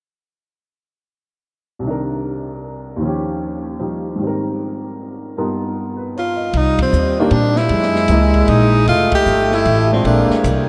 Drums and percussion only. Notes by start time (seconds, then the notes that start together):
6.53 kick, ride
6.79 kick, ride
6.93 hi-hat pedal
7.31 kick, ride
7.56 snare
7.69 kick, ride
7.82 snare
7.96 snare
8.08 kick, hi-hat pedal, ride
8.34 kick, ride
8.48 kick, ride
8.87 kick, ride
9.12 kick, ride
9.26 hi-hat pedal
9.52 snare
9.65 kick, ride
10.05 kick, ride
10.30 snare
10.44 kick, hi-hat pedal, ride